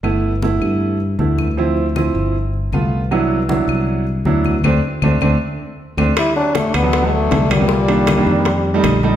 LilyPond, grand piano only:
\new Staff \with { instrumentName = "Grand piano" } { \time 4/4 \key g \major \tempo 4 = 157 <a b e'>8. r16 <a b e'>4. r8 <a b e'>8. r16 | <f c' e'>8. r16 <f c' e'>4 r4 <a b f'>8. r16 | <fis b d' e'>8. r16 <fis b d' e'>4. r8 <fis b d' e'>8. r16 | <a c' d'>8 r8 <a c' d'>8 <a c' d'>8 r4. <a c' d'>8 |
r4. r16 <fis a b>16 r16 <fis a b>4 r8 <fis a b>16 | r8 <ees bes d'>8 r16 <ees bes d'>8. r8. <g a ees'>8 r16 <g a ees'>8 | }